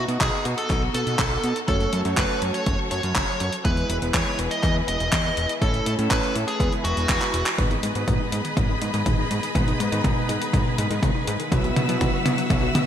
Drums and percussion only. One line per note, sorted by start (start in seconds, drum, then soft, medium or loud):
0.09 closed hi-hat medium
0.21 kick loud
0.21 clap loud
0.21 closed hi-hat medium
0.45 closed hi-hat medium
0.58 closed hi-hat soft
0.70 kick loud
0.70 clap soft
0.70 closed hi-hat medium
0.94 closed hi-hat medium
1.07 closed hi-hat soft
1.19 kick loud
1.19 clap loud
1.19 closed hi-hat medium
1.44 closed hi-hat medium
1.56 closed hi-hat soft
1.68 kick loud
1.68 closed hi-hat medium
1.81 closed hi-hat soft
1.93 closed hi-hat medium
2.05 closed hi-hat medium
2.17 kick loud
2.17 clap loud
2.17 closed hi-hat medium
2.42 closed hi-hat medium
2.54 closed hi-hat medium
2.66 kick loud
2.66 closed hi-hat medium
2.91 closed hi-hat medium
3.03 closed hi-hat soft
3.15 kick loud
3.15 clap loud
3.15 closed hi-hat medium
3.40 closed hi-hat medium
3.53 closed hi-hat soft
3.65 kick loud
3.65 closed hi-hat medium
3.77 closed hi-hat soft
3.90 closed hi-hat medium
4.02 closed hi-hat medium
4.14 kick loud
4.14 clap loud
4.14 closed hi-hat medium
4.39 closed hi-hat medium
4.51 closed hi-hat medium
4.63 kick loud
4.63 clap soft
4.63 closed hi-hat medium
4.88 closed hi-hat medium
5.00 closed hi-hat soft
5.12 kick loud
5.12 clap loud
5.12 closed hi-hat medium
5.37 closed hi-hat medium
5.49 closed hi-hat medium
5.62 kick loud
5.62 closed hi-hat medium
5.74 closed hi-hat soft
5.86 closed hi-hat medium
5.99 closed hi-hat medium
6.11 kick loud
6.11 clap loud
6.11 closed hi-hat medium
6.23 closed hi-hat soft
6.36 closed hi-hat medium
6.48 closed hi-hat medium
6.60 kick loud
6.60 closed hi-hat medium
6.73 closed hi-hat soft
6.85 closed hi-hat medium
6.97 closed hi-hat medium
7.09 kick loud
7.09 clap loud
7.09 closed hi-hat medium
7.22 clap medium
7.22 closed hi-hat soft
7.34 closed hi-hat medium
7.46 clap medium
7.46 closed hi-hat medium
7.58 kick loud
7.58 closed hi-hat medium
7.58 mid tom soft
7.71 closed hi-hat soft
7.83 closed hi-hat medium
7.95 closed hi-hat medium
8.08 kick loud
8.08 closed hi-hat medium
8.08 mid tom soft
8.32 closed hi-hat medium
8.45 closed hi-hat medium
8.57 kick loud
8.57 closed hi-hat medium
8.57 mid tom medium
8.82 closed hi-hat medium
8.94 closed hi-hat medium
9.06 kick loud
9.06 closed hi-hat medium
9.06 mid tom medium
9.31 closed hi-hat medium
9.43 closed hi-hat medium
9.55 kick loud
9.55 closed hi-hat medium
9.55 mid tom medium
9.68 closed hi-hat soft
9.80 closed hi-hat medium
9.92 closed hi-hat medium
10.04 kick loud
10.04 closed hi-hat medium
10.04 mid tom medium
10.29 closed hi-hat medium
10.42 closed hi-hat medium
10.53 kick loud
10.53 closed hi-hat medium
10.53 mid tom medium
10.78 closed hi-hat medium
10.91 closed hi-hat medium
11.03 kick loud
11.03 closed hi-hat medium
11.03 mid tom medium
11.27 closed hi-hat medium
11.40 closed hi-hat medium
11.52 kick loud
11.52 closed hi-hat medium
11.52 mid tom medium
11.64 closed hi-hat soft
11.76 closed hi-hat medium
11.76 mid tom medium
11.89 closed hi-hat medium
12.01 kick loud
12.01 closed hi-hat medium
12.01 mid tom medium
12.26 closed hi-hat medium
12.26 mid tom medium
12.38 closed hi-hat medium
12.50 kick loud
12.50 closed hi-hat medium
12.50 mid tom medium
12.75 closed hi-hat medium
12.75 mid tom medium